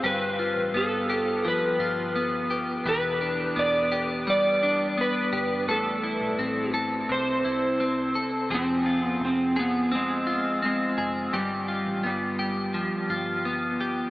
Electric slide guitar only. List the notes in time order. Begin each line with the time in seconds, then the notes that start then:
0.06 B4
0.77 A4
1.48 B4
2.89 B4
3.59 D5
4.30 D5
5.01 B4
5.71 A4
7.12 C5
8.54 C4
9.04 B3
9.25 C4
9.59 B3
9.95 G#3
10.65 G#3
11.35 G3
12.06 G3